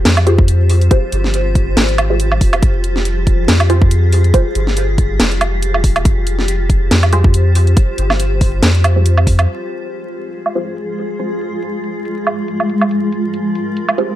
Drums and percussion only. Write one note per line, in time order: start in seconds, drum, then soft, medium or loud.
0.05 snare loud
0.05 closed hi-hat medium
0.17 closed hi-hat soft
0.17 low woodblock medium
0.27 closed hi-hat soft
0.38 kick loud
0.48 closed hi-hat medium
0.70 open hi-hat medium
0.81 closed hi-hat soft
0.91 kick loud
0.91 closed hi-hat medium
1.12 closed hi-hat medium
1.24 snare soft
1.34 closed hi-hat medium
1.55 kick medium
1.55 closed hi-hat soft
1.77 snare loud
1.77 closed hi-hat medium
1.89 closed hi-hat soft
1.98 closed hi-hat soft
1.98 low woodblock medium
2.20 closed hi-hat medium
2.32 low woodblock medium
2.41 kick medium
2.41 open hi-hat medium
2.53 closed hi-hat soft
2.53 low woodblock medium
2.63 kick loud
2.63 closed hi-hat medium
2.84 closed hi-hat medium
2.96 snare soft
3.05 closed hi-hat medium
3.27 kick medium
3.27 closed hi-hat soft
3.48 snare loud
3.48 closed hi-hat medium
3.60 closed hi-hat soft
3.60 low woodblock medium
3.70 closed hi-hat soft
3.81 kick loud
3.91 closed hi-hat medium
4.12 open hi-hat medium
4.24 closed hi-hat soft
4.34 kick loud
4.34 closed hi-hat medium
4.55 closed hi-hat medium
4.67 snare soft
4.77 closed hi-hat medium
4.98 kick medium
4.98 closed hi-hat medium
5.20 snare loud
5.20 closed hi-hat medium
5.31 closed hi-hat soft
5.41 closed hi-hat medium
5.41 low woodblock medium
5.62 closed hi-hat medium
5.74 low woodblock medium
5.84 kick medium
5.84 open hi-hat loud
5.96 closed hi-hat soft
5.96 low woodblock medium
6.05 kick loud
6.05 closed hi-hat medium
6.27 closed hi-hat medium
6.39 snare soft
6.48 closed hi-hat medium
6.70 kick medium
6.70 closed hi-hat medium
6.91 snare loud
6.91 closed hi-hat medium
7.03 closed hi-hat soft
7.03 low woodblock medium
7.13 closed hi-hat medium
7.24 kick loud
7.34 closed hi-hat medium
7.55 open hi-hat loud
7.67 closed hi-hat soft
7.77 kick loud
7.77 closed hi-hat medium
7.98 closed hi-hat medium
8.10 snare soft
8.10 low woodblock medium
8.20 closed hi-hat medium
8.41 kick medium
8.41 open hi-hat medium
8.63 snare loud
8.63 closed hi-hat medium
8.75 closed hi-hat soft
8.84 closed hi-hat medium
8.84 low woodblock medium
9.06 closed hi-hat medium
9.17 low woodblock medium
9.27 kick medium
9.27 open hi-hat loud
9.39 closed hi-hat soft
9.39 low woodblock medium
9.48 closed hi-hat medium
9.70 closed hi-hat medium
9.91 closed hi-hat medium
10.13 closed hi-hat medium
10.34 closed hi-hat medium
10.46 closed hi-hat soft
10.46 low woodblock medium
10.55 closed hi-hat soft
10.77 closed hi-hat medium
10.98 closed hi-hat soft
11.10 closed hi-hat soft
11.20 closed hi-hat medium
11.41 closed hi-hat medium
11.62 closed hi-hat medium
11.84 closed hi-hat soft
12.05 closed hi-hat medium
12.17 closed hi-hat soft
12.27 closed hi-hat soft
12.27 low woodblock medium
12.48 closed hi-hat medium
12.60 low woodblock soft
12.69 closed hi-hat soft
12.81 closed hi-hat soft
12.81 low woodblock medium
12.91 closed hi-hat medium
13.12 closed hi-hat medium
13.34 closed hi-hat medium
13.55 closed hi-hat soft
13.77 closed hi-hat medium
13.89 closed hi-hat soft
13.89 low woodblock medium
13.98 closed hi-hat soft